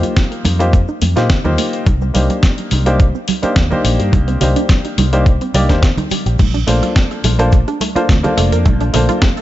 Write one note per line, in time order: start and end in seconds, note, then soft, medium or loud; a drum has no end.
0.00 0.56 A#3 medium
0.00 0.56 D#4 medium
0.00 0.56 F4 medium
0.00 0.12 F4 loud
0.00 0.57 G4 medium
0.00 0.57 C5 medium
0.00 closed hi-hat medium
0.00 high conga medium
0.04 cabasa soft
0.16 0.27 A#3 medium
0.16 kick loud
0.16 snare loud
0.16 closed hi-hat medium
0.16 cabasa medium
0.32 0.41 A#4 medium
0.32 closed hi-hat soft
0.32 cabasa soft
0.45 0.84 F2 medium
0.45 0.55 A#3 loud
0.45 open hi-hat loud
0.45 high conga medium
0.45 cabasa medium
0.59 0.77 A#3 medium
0.59 0.77 D#4 medium
0.59 0.77 F4 medium
0.59 0.77 G4 medium
0.59 0.69 C5 medium
0.59 0.77 C5 loud
0.59 closed hi-hat soft
0.59 cabasa soft
0.73 0.88 A#3 loud
0.73 kick loud
0.73 closed hi-hat medium
0.73 cabasa medium
0.88 0.98 D#4 loud
0.88 cabasa soft
1.02 1.14 F2 loud
1.02 1.12 A#3 loud
1.02 open hi-hat loud
1.02 high conga medium
1.02 cabasa medium
1.16 1.28 A#2 loud
1.16 1.33 A#3 medium
1.16 1.33 D#4 medium
1.16 1.33 F4 medium
1.16 1.26 F4 loud
1.16 1.34 G4 medium
1.16 1.34 C5 medium
1.16 snare soft
1.16 closed hi-hat soft
1.16 cabasa soft
1.30 1.40 A#3 medium
1.30 kick loud
1.30 snare loud
1.30 closed hi-hat medium
1.30 low conga medium
1.30 cabasa medium
1.44 1.56 D#2 medium
1.44 1.85 A#3 medium
1.44 1.85 D#4 medium
1.44 1.85 F4 medium
1.44 1.85 G4 medium
1.44 1.54 A#4 medium
1.44 1.85 C5 loud
1.44 high conga medium
1.44 low conga medium
1.44 cabasa soft
1.58 1.69 A#3 loud
1.58 open hi-hat loud
1.58 cabasa loud
1.73 1.83 C5 medium
1.73 closed hi-hat medium
1.73 cabasa soft
1.86 2.10 C2 medium
1.86 2.01 G3 loud
1.86 kick loud
1.86 closed hi-hat medium
1.86 high conga medium
1.86 cabasa medium
2.02 2.11 C4 loud
2.02 cabasa soft
2.14 2.27 C2 medium
2.14 2.25 G3 loud
2.14 2.82 A#3 medium
2.14 2.83 D4 medium
2.14 2.83 D#4 medium
2.14 2.83 G4 medium
2.14 2.83 C5 medium
2.14 open hi-hat loud
2.14 cabasa medium
2.30 2.39 D4 loud
2.30 closed hi-hat medium
2.30 high conga medium
2.30 cabasa soft
2.43 2.54 G3 medium
2.43 kick loud
2.43 snare loud
2.43 closed hi-hat medium
2.43 cabasa medium
2.58 2.68 D#4 medium
2.58 closed hi-hat soft
2.58 cabasa soft
2.71 3.11 C2 medium
2.71 2.82 G3 loud
2.71 open hi-hat medium
2.71 high conga medium
2.71 cabasa medium
2.86 3.03 A#3 loud
2.86 3.03 D4 medium
2.86 3.03 D#4 medium
2.86 3.03 G4 medium
2.86 2.96 G4 medium
2.86 3.04 C5 loud
2.86 closed hi-hat medium
2.86 cabasa soft
3.00 3.14 G3 loud
3.00 kick loud
3.00 closed hi-hat medium
3.00 cabasa medium
3.15 3.24 C4 loud
3.15 cabasa soft
3.28 3.39 G3 loud
3.28 open hi-hat loud
3.28 high conga medium
3.28 cabasa medium
3.42 3.60 A#3 medium
3.42 3.60 D4 medium
3.42 3.52 D4 loud
3.42 3.60 D#4 medium
3.42 3.60 G4 medium
3.42 3.60 C5 medium
3.42 muted fingered electric bass stroke soft
3.42 closed hi-hat medium
3.42 cabasa soft
3.56 3.69 D#2 medium
3.56 3.67 G3 medium
3.56 kick loud
3.56 snare loud
3.56 closed hi-hat medium
3.56 cabasa soft
3.70 4.38 A#3 medium
3.70 4.38 D4 medium
3.70 3.80 D#4 medium
3.70 4.38 D#4 medium
3.70 4.38 G4 medium
3.70 4.39 C5 loud
3.70 high conga medium
3.70 low conga medium
3.70 cabasa soft
3.84 3.97 A#1 medium
3.84 3.95 G3 loud
3.84 open hi-hat loud
3.84 cabasa loud
3.99 4.11 G2 medium
3.99 4.09 G4 medium
3.99 closed hi-hat medium
3.99 cabasa soft
4.13 4.37 C2 loud
4.13 4.27 G3 loud
4.13 kick loud
4.13 closed hi-hat medium
4.13 high conga medium
4.13 cabasa medium
4.28 4.37 C4 loud
4.28 closed hi-hat soft
4.28 cabasa soft
4.41 4.54 C2 medium
4.41 4.52 G3 loud
4.41 5.09 A#3 medium
4.41 5.09 D4 medium
4.41 5.10 D#4 medium
4.41 5.10 G4 medium
4.41 5.10 C5 medium
4.41 open hi-hat loud
4.41 low conga medium
4.41 cabasa medium
4.56 4.65 D4 loud
4.56 closed hi-hat medium
4.56 high conga medium
4.56 cabasa soft
4.69 4.80 G3 medium
4.69 kick loud
4.69 snare loud
4.69 closed hi-hat medium
4.69 cabasa medium
4.85 4.94 D#4 medium
4.85 closed hi-hat soft
4.85 cabasa soft
4.98 5.37 C2 medium
4.98 5.08 G3 loud
4.98 open hi-hat loud
4.98 high conga medium
4.98 cabasa medium
5.13 5.30 A#3 loud
5.13 5.30 D4 medium
5.13 5.30 D#4 medium
5.13 5.22 G4 medium
5.13 5.30 G4 medium
5.13 5.30 C5 loud
5.13 closed hi-hat medium
5.13 cabasa soft
5.26 5.41 G3 medium
5.26 kick loud
5.26 closed hi-hat medium
5.26 cabasa soft
5.41 5.51 C4 loud
5.41 closed hi-hat soft
5.41 cabasa soft
5.54 5.67 C2 loud
5.54 5.65 G3 loud
5.54 5.67 A#3 medium
5.54 5.67 D4 medium
5.54 5.67 D#4 medium
5.54 5.67 G4 medium
5.54 5.68 D5 loud
5.54 open hi-hat loud
5.54 high conga medium
5.54 cabasa medium
5.69 5.80 D#2 loud
5.69 5.86 A#3 loud
5.69 5.86 D4 medium
5.69 5.79 D4 loud
5.69 5.86 D#4 medium
5.69 5.86 G4 medium
5.69 5.87 C5 loud
5.69 kick medium
5.69 snare soft
5.69 closed hi-hat medium
5.69 cabasa soft
5.82 5.93 G3 medium
5.82 kick loud
5.82 snare loud
5.82 closed hi-hat medium
5.82 low conga medium
5.82 cabasa medium
5.97 6.07 D#4 medium
5.97 closed hi-hat soft
5.97 high conga medium
5.97 low conga medium
5.97 cabasa soft
6.10 6.22 G3 loud
6.10 muted fingered electric bass stroke soft
6.10 open hi-hat loud
6.10 cabasa loud
6.26 6.37 A#1 medium
6.26 6.35 G4 medium
6.26 closed hi-hat medium
6.26 cabasa soft
6.39 6.63 A#1 medium
6.39 6.54 A3 loud
6.39 kick loud
6.39 closed hi-hat medium
6.39 crash loud
6.39 high conga medium
6.39 cabasa medium
6.54 6.63 D4 loud
6.54 closed hi-hat soft
6.54 cabasa soft
6.67 6.80 A#1 medium
6.67 6.78 A3 loud
6.67 7.35 A#3 medium
6.67 7.36 D4 medium
6.67 7.36 F4 medium
6.67 7.36 A4 medium
6.67 7.36 C5 medium
6.67 open hi-hat loud
6.67 high bongo soft
6.67 cabasa medium
6.82 6.92 F4 loud
6.82 closed hi-hat medium
6.82 high conga medium
6.82 cabasa soft
6.96 7.06 A3 medium
6.96 kick loud
6.96 snare loud
6.96 closed hi-hat medium
6.96 cabasa medium
7.11 7.20 A4 medium
7.11 closed hi-hat soft
7.11 cabasa soft
7.24 7.63 A#1 medium
7.24 7.35 A3 loud
7.24 open hi-hat loud
7.24 high bongo medium
7.24 high conga medium
7.24 cabasa loud
7.39 7.56 A#3 loud
7.39 7.56 D4 medium
7.39 7.56 F4 medium
7.39 7.56 A4 medium
7.39 7.49 A#4 medium
7.39 7.56 C5 loud
7.39 closed hi-hat medium
7.39 cabasa soft
7.52 7.67 A3 loud
7.52 kick loud
7.52 closed hi-hat medium
7.52 cabasa medium
7.68 7.77 D4 loud
7.68 closed hi-hat soft
7.68 high bongo medium
7.68 cabasa soft
7.81 7.91 A3 loud
7.81 open hi-hat loud
7.81 high conga medium
7.81 cabasa loud
7.95 8.13 A#3 medium
7.95 8.13 D4 medium
7.95 8.13 F4 medium
7.95 8.05 F4 loud
7.95 8.13 A4 medium
7.95 8.13 C5 loud
7.95 muted fingered electric bass stroke soft
7.95 closed hi-hat medium
7.95 cabasa soft
8.09 8.21 D2 medium
8.09 8.20 A3 medium
8.09 kick loud
8.09 snare loud
8.09 closed hi-hat medium
8.09 cabasa medium
8.23 8.90 A#3 loud
8.23 8.91 D4 medium
8.23 8.91 F4 medium
8.23 8.33 A4 medium
8.23 8.91 A4 medium
8.23 8.91 C5 loud
8.23 closed hi-hat soft
8.23 high bongo medium
8.23 high conga medium
8.23 low conga medium
8.23 cabasa soft
8.37 8.50 F1 medium
8.37 8.48 A3 loud
8.37 open hi-hat loud
8.37 cabasa medium
8.52 8.63 F2 medium
8.52 8.62 A#4 medium
8.52 closed hi-hat medium
8.52 cabasa soft
8.66 8.89 A#1 loud
8.66 8.80 A3 loud
8.66 kick loud
8.66 closed hi-hat medium
8.66 high bongo medium
8.66 high conga medium
8.66 cabasa medium
8.81 8.90 D4 loud
8.81 closed hi-hat soft
8.81 cabasa soft
8.93 9.06 A#1 medium
8.93 9.04 A3 loud
8.93 9.42 A#3 medium
8.93 9.42 D4 medium
8.93 9.42 F4 medium
8.93 9.42 A4 medium
8.93 9.42 C5 medium
8.93 open hi-hat loud
8.93 low conga medium
8.93 cabasa medium
9.09 9.18 F4 loud
9.09 closed hi-hat medium
9.09 high conga medium
9.09 cabasa soft
9.22 9.33 A3 medium
9.22 kick loud
9.22 snare loud
9.22 closed hi-hat medium
9.22 high bongo medium
9.22 cabasa medium
9.37 9.42 A4 medium
9.37 closed hi-hat soft
9.37 cabasa soft